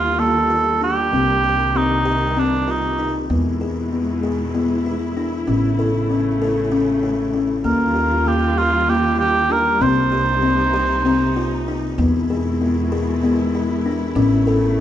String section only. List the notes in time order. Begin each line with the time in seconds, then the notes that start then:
Already playing: D#3 G3 F4
1.12 C3 D#3
3.29 B2 G#3 E4
5.46 C#3 A3
7.64 D#3 G3 F4
9.81 C3 D#4
11.98 B2 G#3 E4
14.16 C#3 A3